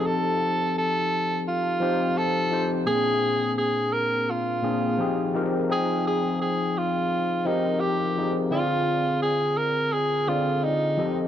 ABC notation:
X:1
M:4/4
L:1/16
Q:"Swing 16ths" 1/4=85
K:Fdor
V:1 name="Tenor saxophone"
=A4 A4 F4 A3 z | A4 A2 B2 F6 z2 | A2 A2 A2 F4 E2 G3 z | F4 A2 B2 A2 F2 E3 z |]
V:2 name="Tine electric piano"
[F,CEG=A]4- [F,CEGA] z4 z [F,CEGc]4 [F,CEGc]2 | [B,,B,C_D=DA]6- [B,,B,C_D=DA] z3 [B,,B,CDA]2 [F,CEGA]2 [F,CEGB]2 | [F,CEAg]6- [F,CEAg] z3 [F,CEGB]4 [F,CEGA]2 | [D,CEFAd]6- [D,CEFAd] z3 [D,CFAd]4 [F,CG=Ae]2 |]